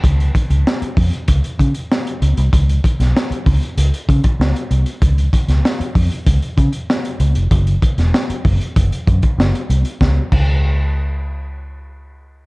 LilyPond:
<<
  \new Staff \with { instrumentName = "Fingered electric bass" } { \clef bass \time 4/4 \key des \major \tempo 4 = 96 des,8 r16 des,16 r8 f,16 r16 des,16 r16 des16 r8. des,16 c,16 | des,8 r16 ces,16 r8 des,16 r16 des,16 r16 des16 r16 des,16 r16 c,16 r16 | des,8 r16 des,16 r8 f,16 r16 des,16 r16 des16 r8. des,16 f,,16 | fis,,8 r16 e,,16 r8 fis,,16 r16 fis,,16 r16 fis,16 r16 fis,,16 r16 c,16 r16 |
des,16 r16 des,2.~ des,8 | }
  \new DrumStaff \with { instrumentName = "Drums" } \drummode { \time 4/4 <hh bd>16 hh16 <hh bd>16 hh16 sn16 hh16 <hho bd>16 hh16 <hh bd>16 hh16 <hh bd>16 hh16 sn16 hh16 hh16 hh16 | <hh bd>16 hh16 <hh bd>16 <hh sn>16 sn16 hh16 <hho bd>16 hh16 hh16 hh16 <hh bd>16 <hh bd>16 sn16 hh16 hh16 hh16 | <hh bd>16 hh16 <hh bd>16 <hh sn>16 sn16 hh16 <hho bd>16 hh16 <hh bd>16 hh16 <hh bd>16 hh16 sn16 hh16 hh16 hh16 | <hh bd>16 hh16 <hh bd>16 <hh sn>16 sn16 hh16 <hho bd>16 hh16 <hh bd>16 hh16 <hh bd>16 <hh bd>16 sn16 hh16 hh16 hh16 |
<bd sn>8 <cymc bd>8 r4 r4 r4 | }
>>